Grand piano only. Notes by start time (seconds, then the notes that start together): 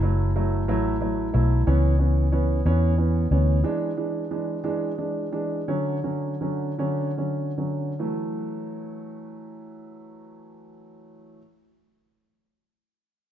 0.02 F#3 A3 E4
0.36 F#3 A3 E4
0.68 F#3 A3 E4
1.01 F#3 A3 E4
1.33 F#3 A3 E4
1.66 E3 B3 C#4
1.99 E3 B3 C#4
2.32 E3 B3 C#4
2.66 E3 B3 C#4
2.97 E3 B3 C#4
3.31 E3 B3 C#4
3.64 E3 G#3 D4
3.97 E3 G#3 D4
4.31 E3 G#3 D4
4.64 E3 G#3 D4
4.98 E3 G#3 D4
5.32 E3 G#3 D4
5.68 D3 F#3 C#4
6.04 D3 F#3 C#4
6.41 D3 F#3 C#4
6.78 D3 F#3 C#4
7.17 D3 F#3 C#4
7.57 D3 F#3 C#4
7.99 E3 F#3 A3